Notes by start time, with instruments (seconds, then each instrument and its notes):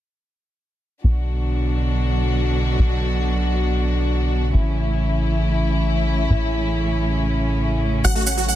1.04 analog synth bass B1, string section B2 D3 F#3 D4 F#4
2.79 analog synth bass B1
4.54 analog synth bass A1, string section A2 C#3 E3 C#4 E4
6.29 analog synth bass A1
8.04 analog synth bass A1, synth pluck F#3, string section F#3 F#4, grand piano F#5, supersaw synth F#5, maracas
8.15 synth pluck A3, grand piano F#4, supersaw synth F#4
8.26 synth pluck C#4, grand piano F#5, supersaw synth F#5, maracas
8.37 synth pluck F#3, grand piano F#4, supersaw synth F#4, maracas
8.48 grand piano F#5, supersaw synth F#5, maracas